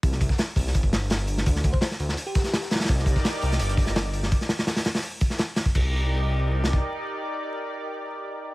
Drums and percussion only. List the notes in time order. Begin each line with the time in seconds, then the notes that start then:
0.03 kick, closed hi-hat, open hi-hat
0.12 snare
0.21 kick, closed hi-hat, open hi-hat
0.29 kick, snare
0.38 snare, closed hi-hat, open hi-hat
0.56 kick, closed hi-hat, open hi-hat
0.65 snare, closed hi-hat
0.74 kick, closed hi-hat, open hi-hat
0.83 kick
0.93 snare, open hi-hat
1.10 snare, closed hi-hat, open hi-hat
1.27 closed hi-hat, open hi-hat
1.38 snare
1.46 kick, closed hi-hat, open hi-hat
1.56 snare, closed hi-hat
1.64 kick, closed hi-hat, open hi-hat
1.74 kick
1.81 snare, closed hi-hat, open hi-hat
1.91 snare
2.00 closed hi-hat, open hi-hat
2.09 snare
2.17 closed hi-hat, open hi-hat
2.35 kick, snare, closed hi-hat, open hi-hat
2.44 snare, closed hi-hat
2.46 snare
2.53 snare, closed hi-hat, open hi-hat
2.62 snare, closed hi-hat
2.71 snare, closed hi-hat, open hi-hat
2.75 snare, open hi-hat
2.79 snare, closed hi-hat, open hi-hat
2.85 snare, open hi-hat
2.89 kick, closed hi-hat, open hi-hat
2.99 snare
3.06 kick, closed hi-hat, open hi-hat
3.16 kick, snare
3.24 snare, closed hi-hat, open hi-hat
3.41 closed hi-hat, open hi-hat
3.52 snare, closed hi-hat
3.59 closed hi-hat, open hi-hat
3.69 closed hi-hat
3.77 kick, open hi-hat
3.86 snare
3.96 snare, closed hi-hat, open hi-hat
4.13 closed hi-hat, open hi-hat
4.23 snare
4.31 kick, closed hi-hat, open hi-hat
4.41 snare, closed hi-hat
4.49 snare, closed hi-hat, open hi-hat
4.59 snare, open hi-hat
4.67 snare, closed hi-hat, open hi-hat
4.76 snare, open hi-hat
4.85 snare, closed hi-hat, open hi-hat
4.94 snare, open hi-hat
5.02 closed hi-hat, open hi-hat
5.21 kick, closed hi-hat, open hi-hat
5.30 snare
5.38 snare, closed hi-hat, open hi-hat
5.56 snare, closed hi-hat, open hi-hat
5.66 kick
5.75 kick, crash
6.64 snare
6.73 kick